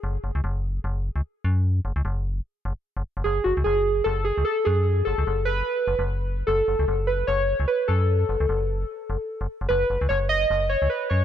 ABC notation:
X:1
M:4/4
L:1/16
Q:"Swing 16ths" 1/4=149
K:F#dor
V:1 name="Synth keys"
z16 | z16 | G2 F2 G4 A2 G2 A2 G2- | G2 A4 B6 z4 |
A6 B2 c4 B2 A2- | A12- A2 z2 | B4 c2 d4 c2 B2 c2 |]
V:2 name="FM bass" clef=bass
F,,, z F,,, C,, F,,,3 z F,,,2 z C,, z2 F,,2- | F,, z F,,, C,, F,,,3 z3 F,,, z2 F,,, z F,,, | F,,, z F,,, C,, F,,,3 z F,,,2 z C,, z2 F,,2- | F,, z F,,, C,, F,,,3 z3 F,,, F,,,4 z |
F,,, z F,,, C,, F,,,3 z F,,,2 z C,, z2 F,,2- | F,, z F,,, C,, F,,,3 z3 F,,, z2 F,,, z F,,, | F,,, z F,,, C,, F,,,3 z F,,,2 z C,, z2 F,,2 |]